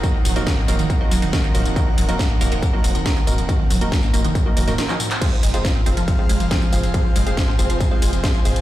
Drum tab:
CC |----------------|----------------|----------------|x---------------|
RD |----------------|----------------|----------------|x---x---x---x---|
HH |x-oxx-oxx-oxx-ox|x-oxx-oxx-oxx-ox|x-oxx-oxx-oxx-ox|x-oxx-oxx-oxx-ox|
TB |x-xxx-xxx-xxxxxx|x-xxx-xxx-xxxxxx|x-xxxxxxx-xxxxxx|x-xxx-xxx-xxxxxx|
CP |----------------|----------------|-------------x-x|----------------|
SD |----oo------o---|----o-------o---|----oo-----oo---|----o-------o---|
T2 |--o--oo-------o-|--o--oo-------o-|--o--oo----o--o-|--o--oo-------o-|
BD |o---o---o---o---|o---o---o---o---|o---o---o-------|o---o---o---o---|

CC |----------------|
RD |x---x---x---x---|
HH |x-oxx-oxx-oxx-ox|
TB |x-xxx-xxx-xxxxxx|
CP |----------------|
SD |----oo------o---|
T2 |--o--oo-------o-|
BD |o---o---o---o---|